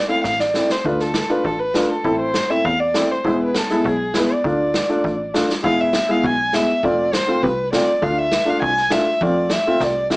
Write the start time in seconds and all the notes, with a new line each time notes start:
0.08 A3 C4 E4 F5
0.24 A1 F5, kick, snare
0.39 D5, snare
0.54 A3 C4 E4, snare
0.69 C5, snare
0.85 D2 A3 D4 F4 B4, kick
0.99 A4, snare
1.14 snare
1.29 A3 D4 F4 B4
1.44 A1 A4, kick
1.60 B4
1.74 A3 D4 F4, snare
1.83 B4
1.90 A4
2.04 A1 A3 C4 E4, kick
2.20 C5
2.34 snare
2.50 A3 C4 E4 E5
2.65 E2 F5, kick
2.79 D5
2.94 A3 C4 E4, snare
3.11 C5
3.25 E1 G#3 B3 E4, kick
3.43 B4
3.54 A4, snare
3.69 G#3 B3 E4, snare
3.84 B1 G#4, kick
4.14 G#3 B3 E4, snare
4.19 B4
4.33 D5
4.44 D2 A3 D4 F4, kick
4.74 snare
4.89 A3 D4 F4
5.04 A1, kick
5.34 A3 D4 F4, snare
5.50 snare
5.63 E1 G#3 B3 E4 F5, kick
5.81 E5
5.93 snare
6.08 G#3 B3 E4 F5
6.23 B1 G#5, kick
6.53 G#3 B3 E4 E5, snare
6.83 F1 A3 C4 F4 D5, kick
7.13 C5, snare
7.27 A3 C4 F4
7.42 C2 B4, kick
7.72 A3 C4 F4 D5, snare
8.02 D2 A3 D4 F4 F5, kick
8.19 E5
8.32 snare
8.45 A3 D4 F4
8.50 F5
8.62 C2 G#5, kick
8.77 snare
8.90 A3 D4 F4 E5, snare
9.21 F2 A3 C4 F4 D5, kick
9.50 E5, snare
9.67 A3 C4 F4
9.80 C2 D5, kick, snare
10.10 A3 C4 F4 E5, snare